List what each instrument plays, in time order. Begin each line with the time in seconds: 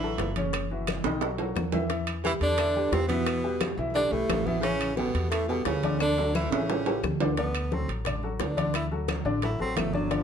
Already playing: upright bass A1, baritone saxophone E3, tenor saxophone E4
0.02 grand piano F#3 F#4 A4, high conga
0.18 upright bass F#1, high bongo, low bongo, high conga, high timbale, low timbale
0.36 grand piano C#3 C#4 C#5, high conga, high timbale
0.53 high bongo, high conga, high timbale, claves
0.71 grand piano E3 E4 F#4, high conga
0.87 high bongo, high conga, high timbale, low timbale, claves
1.04 upright bass B1, grand piano D#3 D#4 D#5, high bongo, high timbale
1.21 grand piano F#3 F#4 A4, high bongo, high timbale
1.38 grand piano F#3 F#4 A4, high bongo, high conga, low timbale
1.55 upright bass E2, high bongo, low bongo, high conga, low timbale, claves
1.72 grand piano E3 E4 E5, high bongo, high conga, low timbale
1.90 grand piano E3 E4 E5, high bongo, high conga, high timbale
2.07 high conga, high timbale, claves
2.24 baritone saxophone E3, grand piano G3 G4 B4, tenor saxophone E4, high bongo, high conga, low timbale
2.41 upright bass E2, baritone saxophone D3, tenor saxophone D4, high timbale
2.58 grand piano E3 E4 E5, high bongo, high conga, high timbale, claves
2.76 grand piano G3 G4 B4, high conga
2.92 upright bass E2, baritone saxophone C3, tenor saxophone C4, high bongo, low bongo, high conga, high timbale, low timbale
3.08 baritone saxophone B2, grand piano E3 E4 E5, tenor saxophone B3, high conga, high timbale
3.26 high bongo, high conga, high timbale, claves
3.44 grand piano G3 G4 B4, high conga
3.61 high bongo, high conga, high timbale, low timbale, claves
3.77 upright bass B1, grand piano E3 E4 E5, high bongo
3.93 baritone saxophone D3, grand piano G3 G4 B4, tenor saxophone D4, high bongo, high conga, high timbale
4.10 upright bass B1, baritone saxophone A2, grand piano G3 G4, tenor saxophone A3, high bongo, high conga
4.14 grand piano B4
4.29 upright bass A1, high bongo, low bongo, high conga, high timbale, low timbale, claves
4.44 baritone saxophone B2, grand piano E3 E4 E5, tenor saxophone B3, high bongo, high conga
4.61 baritone saxophone C#3, grand piano E3 E5, tenor saxophone C#4, high bongo, high conga, high timbale
4.65 grand piano E4
4.81 high conga, high timbale, claves
4.95 baritone saxophone B2, grand piano G3 G4 A4, tenor saxophone B3, high bongo, high conga, low timbale
5.14 upright bass E2, high timbale
5.29 baritone saxophone A2, grand piano E3 E4 E5, tenor saxophone A3, high bongo, high conga, high timbale, claves
5.47 baritone saxophone B2, grand piano G3 G4 A4, tenor saxophone B3, high conga
5.64 upright bass D2, baritone saxophone C#3, tenor saxophone C#4, high bongo, low bongo, high conga, high timbale, low timbale
5.83 grand piano D3 D4 D5, high conga, high timbale
5.99 baritone saxophone D3, tenor saxophone D4, high bongo, high conga, high timbale, claves
6.18 grand piano F#3 F#4 A4, high conga, high timbale
6.33 baritone saxophone E3, tenor saxophone E4, high bongo, high conga, claves
6.51 upright bass A1, baritone saxophone C#3, grand piano E3 E4 E5, tenor saxophone C#4, high bongo, high timbale
6.69 grand piano G3 G4 A4, high bongo, high conga, low timbale
6.86 grand piano G3 G4 A4, high bongo, high conga, low timbale
7.03 upright bass D2, high bongo, low bongo, high conga, claves
7.20 grand piano D3 D4 D5, high bongo, high conga, low timbale
7.37 grand piano D3 D4 D5, tenor saxophone B3, high bongo, high conga, high timbale
7.55 high timbale, claves
7.72 grand piano F#3 F#4 A4, tenor saxophone C4, high bongo, high conga, low timbale
7.88 upright bass A1, high timbale
8.05 grand piano D3 D4 D5, high bongo, high conga, low conga, high timbale, claves
8.23 grand piano F#3 F#4 A4, high conga
8.39 upright bass D2, tenor saxophone D4, high bongo, low bongo, high conga, high timbale, low timbale
8.57 grand piano D3 D4 D5, high conga, high timbale
8.74 tenor saxophone E4, high bongo, high conga, high timbale, claves
8.91 grand piano F#3 F#4 A4, high conga
9.08 high bongo, high conga, high timbale, low timbale, claves
9.25 upright bass A1, grand piano D3 D4 D5, high bongo
9.42 grand piano F#3 F#4 A4, tenor saxophone E4, high bongo, high conga, high timbale
9.59 upright bass A1, grand piano F#3 F#4 A4, tenor saxophone C4, high bongo, high conga
9.76 upright bass G1, tenor saxophone A3, high bongo, low bongo, high conga, high timbale, low timbale, claves
9.93 grand piano D3 D4 D5, tenor saxophone F#3, high bongo, high conga
10.11 grand piano D3 D4 D5, tenor saxophone F3, high bongo, high conga, high timbale